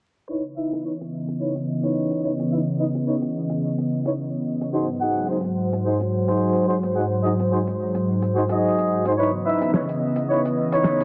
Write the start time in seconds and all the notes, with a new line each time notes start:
0.28 C#3 E3 B3 D#4 E4 B4 C#5 D#5
0.57 D#4 E4 B4 E5
0.73 closed hi-hat
0.84 D#4 E4 B4 C#5
1.01 closed hi-hat
1.28 closed hi-hat
1.40 D#4 E4 B4 C#5
1.56 closed hi-hat
1.83 D#4 E4 B4 C#5, closed hi-hat
2.11 closed hi-hat
2.23 D#4 E4 B4 C#5
2.40 closed hi-hat
2.51 D#4 E4 B4 E5
2.79 D#4 E4 B4 D#5
2.95 closed hi-hat
3.07 D#4 E4 B4 C#5
3.22 closed hi-hat
3.50 closed hi-hat
3.78 closed hi-hat
4.06 D#4 E4 B4 C#5, closed hi-hat
4.61 closed hi-hat
4.73 G#2 F#3 D#4 F#4 G#4 C5
5.01 D#4 F#4 G#4 F#5
5.17 closed hi-hat
5.20 closed hi-hat
5.23 closed hi-hat
5.26 D#4, closed hi-hat
5.29 F#4 G#4 C5, closed hi-hat
5.33 closed hi-hat
5.37 closed hi-hat
5.41 closed hi-hat
5.44 closed hi-hat
5.73 closed hi-hat
5.84 D#4 F#4 G#4 C5
6.00 closed hi-hat
6.28 D#4 F#4 G#4 C5, closed hi-hat
6.55 closed hi-hat
6.68 D#4 F#4 G#4 C5
6.83 closed hi-hat
6.95 D#4 F#4 G#4 F#5
7.23 D#4 F#4 G#4 D#5
7.39 closed hi-hat
7.51 D#4 F#4 G#4 C5
7.67 closed hi-hat
7.95 closed hi-hat
8.22 closed hi-hat
8.34 D#4 F#4 G#4 C5
8.49 D#4 F#4 G#4 D#5, closed hi-hat
8.79 closed hi-hat
9.05 D#4 F#4 G#4 C5, closed hi-hat
9.18 C#3 E3 B3 D#4 E4 B4 C#5 D#5
9.45 D#4 E4 B4 E5
9.61 closed hi-hat
9.73 D#4 E4 B4 C#5, snare
9.89 closed hi-hat
10.16 closed hi-hat
10.29 D#4 E4 B4 C#5
10.45 closed hi-hat
10.72 D#4 E4 B4 C#5, closed hi-hat
10.84 snare
11.00 closed hi-hat